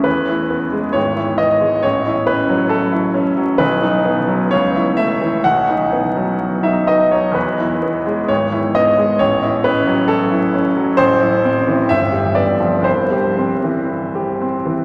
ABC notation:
X:1
M:2/4
L:1/16
Q:1/4=65
K:E
V:1 name="Grand piano"
B4 c2 d2 | c2 B2 A4 | B4 c2 e2 | f4- f e d c |
B4 c2 d2 | c2 B2 A4 | [K:C] c4 e2 d2 | c4 z4 |]
V:2 name="Grand piano"
E,, E B, G, G,,, E B, G, | A,,, E C F,2 E C F, | B,,, D B, F, C,, E A, E, | B,,, D B, F,2 D B, F, |
E,, E B, G, G,,, E B, G, | A,,, E C F,2 E C F, | [K:C] A,,, E C E, G,,, G B, F, | C,, G C E,2 G C E, |]